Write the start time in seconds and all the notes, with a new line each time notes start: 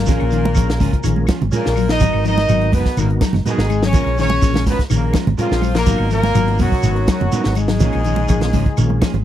Already playing: A#2 A#3 A#4
0.06 A#1 F3 C#4 F4 G#4 A#4, kick, snare, closed hi-hat, low conga, shekere
0.20 A#1, closed hi-hat, claves
0.31 D#3 F3 C#4 F4 G#4, closed hi-hat, shekere
0.45 muted clean electric guitar stroke, closed hi-hat, high conga
0.55 A#1 F3 C#4 F4 G#4 A#4, muted clean electric guitar stroke, kick, closed hi-hat, claves, shekere
0.69 muted clean electric guitar stroke, snare, closed hi-hat
0.80 G#1 C#3 F3 C#4 F4 G#4, kick, open hi-hat, high conga, shekere
0.93 muted clean electric guitar stroke, muted fingered electric bass stroke, kick, closed hi-hat
1.04 A#1 D#3 C#4 F4 G#4 A#4, closed hi-hat, claves, shekere
1.16 muted clean electric guitar stroke, high conga
1.27 F3 C#4 F4 G#4, kick, snare, closed hi-hat, high conga, claves, shekere
1.40 G#1, muted clean electric guitar stroke, closed hi-hat, high conga, low conga
1.51 A#2 F3 A#3 C#4 F4 G#4 A#4, closed hi-hat, high conga, shekere
1.57 A#3
1.66 A#1, snare
1.76 F#3, muted clean electric guitar stroke, open hi-hat, claves, shekere
1.88 D#3 F3 D#4 D#5, muted clean electric guitar stroke, snare, closed hi-hat
1.93 D#4
2.00 G#1 F#3 B3 D#4 F#4 A#4, kick, closed hi-hat, low conga, shekere
2.13 G#1, claves
2.24 D#3 F3 F#3 B3 D#4 A#4 D#5, closed hi-hat, shekere
2.36 muted clean electric guitar stroke, snare, closed hi-hat, high conga
2.48 G#1 F#3 B3 D#4 F#4 A#4, muted clean electric guitar stroke, closed hi-hat, claves, shekere
2.60 muted clean electric guitar stroke, closed hi-hat
2.72 F#1 B2 F#3 B3 D#4 A#4 B4, muted clean electric guitar stroke, kick, open hi-hat, high conga, shekere
2.78 B3
2.85 muted clean electric guitar stroke, muted fingered electric bass stroke, kick, snare
2.97 G#1 A#2 D#3 A#3 B3 D#4 F#4 A#4, closed hi-hat, claves, shekere
3.09 muted clean electric guitar stroke, closed hi-hat
3.21 F#3 D#4 A#4, kick, snare, closed hi-hat, high conga, claves, shekere
3.33 F#1, muted clean electric guitar stroke, snare, closed hi-hat, high conga, low conga
3.44 G#2 F#3 B3 D#4 F#4 A#4, muted fingered electric bass stroke, closed hi-hat, high conga, shekere
3.49 G#3 G#4
3.58 G#1, snare
3.70 G#3, muted clean electric guitar stroke, closed hi-hat, claves, shekere
3.82 C#3 F#3 C#4 C#5, muted clean electric guitar stroke, snare
3.93 A#1 F3 G#3 C#4 F4 G#4 A#4, muted clean electric guitar stroke, kick, closed hi-hat, low conga, shekere
4.06 A#1, closed hi-hat, claves
4.18 C#3 D#3 G#3 C#4 F4 A#4 C#5, snare, closed hi-hat, shekere
4.30 muted clean electric guitar stroke, closed hi-hat, high conga
4.41 A#1 F3 C#4 F4 G#4 A#4, muted clean electric guitar stroke, kick, closed hi-hat, claves, shekere
4.53 muted clean electric guitar stroke, snare, closed hi-hat, high conga, low conga
4.66 G#1 B2 G#3 B3 C#4 F4 A#4 B4, kick, open hi-hat, high conga, shekere
4.70 B3
4.79 muted fingered electric bass stroke, muted clean electric guitar stroke, kick, snare, closed hi-hat
4.90 A#1 A#2 D#3 C#4 F4 G#4 A#4, closed hi-hat, claves, shekere
4.95 A#3 A#4
5.04 muted clean electric guitar stroke
5.13 F3 G#3 C#4 F4 A#4, kick, snare, closed hi-hat, high conga, claves, shekere
5.26 G#1, muted clean electric guitar stroke, closed hi-hat, high conga, low conga
5.38 F2 F3 G#3 C#4 F4 G#4 A#4, closed hi-hat, high conga, shekere
5.51 A#1, snare
5.61 F#3, muted clean electric guitar stroke, open hi-hat, high conga, claves, shekere
5.74 A#2 F3 A#3 A#4, muted clean electric guitar stroke, snare, closed hi-hat
5.86 G#1 F#3 B3 D#4 F#4 A#4, kick, closed hi-hat, low conga, shekere
5.98 G#1, claves
6.10 A#2 F3 F#3 A#3 B3 A#4, muted clean electric guitar stroke, snare, closed hi-hat, shekere
6.23 muted clean electric guitar stroke, snare, closed hi-hat, high conga
6.35 G#1 F#3 B3 D#4 F#4 A#4, muted clean electric guitar stroke, closed hi-hat, claves, shekere
6.48 muted clean electric guitar stroke, closed hi-hat
6.58 F#1 F#2 B2 F#3 B3 D#4 F#4 A#4, kick, open hi-hat, high conga, shekere
6.72 muted clean electric guitar stroke, kick
6.83 G#1 D#3 B3 D#4 F#4 A#4, closed hi-hat, claves, shekere
6.96 muted clean electric guitar stroke, closed hi-hat
7.08 F#2 F#3 D#4 F#4 A#4, kick, snare, closed hi-hat, high conga, claves, shekere
7.20 F#1, muted clean electric guitar stroke, closed hi-hat, high conga, low conga
7.32 F#3 B3 D#4 F#4 A#4, closed hi-hat, high conga, shekere
7.44 G#1, snare
7.55 G#2 G#3, muted clean electric guitar stroke, closed hi-hat, claves, shekere
7.60 G#3 G#4
7.68 F#3, muted clean electric guitar stroke, snare
7.80 A#1 F3 A#3 C#4 F4 G#4, muted clean electric guitar stroke, kick, closed hi-hat, low conga, shekere
7.93 A#1, closed hi-hat, claves
8.04 D#3 F3 A#3 C#4 G#4, closed hi-hat, shekere
8.16 muted clean electric guitar stroke, closed hi-hat, high conga
8.28 A#1 F3 A#3 C#4 F4 G#4, muted clean electric guitar stroke, kick, closed hi-hat, claves, shekere
8.41 muted clean electric guitar stroke, snare, closed hi-hat, low conga
8.53 G#1 C#3 F3 A#3 C#4 G#4, kick, open hi-hat, high conga, shekere
8.65 muted clean electric guitar stroke, muted fingered electric bass stroke, kick, closed hi-hat
8.77 A#1 D#3 A#3 C#4 F4 G#4, closed hi-hat, claves, shekere
8.90 muted clean electric guitar stroke, high conga
9.01 F3 A#3 C#4 G#4, kick, snare, closed hi-hat, high conga, claves, shekere
9.14 G#1, muted clean electric guitar stroke, closed hi-hat, high conga, low conga